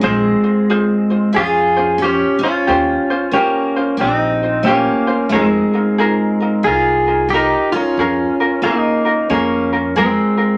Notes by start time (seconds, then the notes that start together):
0.01 A#1 G#3 C4 F4 G#4 C5
0.07 G#3
0.44 F4 C5
0.70 F4 G#4 C5
1.10 F4 C5
1.33 F2 C#4 F4 G#4
1.37 F4 C5
1.77 C#4 F4 C5
1.98 C#4
2.02 C#4 F4 G4 C5
2.39 C#4
2.43 C#4 F4 C5
2.67 D#2 C#4 F4 G4 C5
3.10 C#4 F4 C5
3.31 A#3 C#4 F4 G4 C5
3.37 A#3
3.76 C#4 F4 C5
3.97 A#1 C4 G4
4.01 C4 D#4 F4 C5
4.43 F4 C5
4.63 A#3 C#4 G4
4.68 A#3 F4 C5
5.07 C#4 F4 C5
5.29 F2 G#3 C#4 D#4 G#4
5.33 G#3 F4 A#4
5.44 C4
5.73 D#4 F4 A#4
5.98 D#4 F4 G#4 A#4
6.40 D#4 F4 A#4
6.63 C2 D#4 F4 G#4 A#4
7.07 D#4 F4 A#4
7.28 D#4 G4
7.33 D#4 F4 A#4
7.72 C#4 F4 A#4
7.77 D#4
7.97 F2 C#4 F4 G#4 A#4
8.40 C#4 F4 A#4
8.62 A#3 C#4 D#4 F4 G#4 A#4
8.67 A#3
9.05 C#4 F4 A#4
9.30 F2 A#3 C#4 F4 G#4 A#4
9.73 C#4 F4 A#4
9.96 G#3 C4 F4 G#4 A#4
10.37 F4 A#4